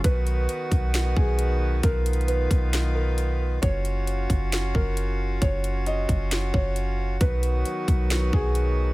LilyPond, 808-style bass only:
\new Staff \with { instrumentName = "808-style bass" } { \clef bass \time 4/4 \key b \lydian \tempo 4 = 134 b,,4 r8 b,,4 b,,4. | b,,4. b,,2~ b,,8 | fis,,4. fis,,4 fis,,4. | fis,,4. fis,,4 fis,,4. |
b,,4 r8 b,,4 b,,4. | }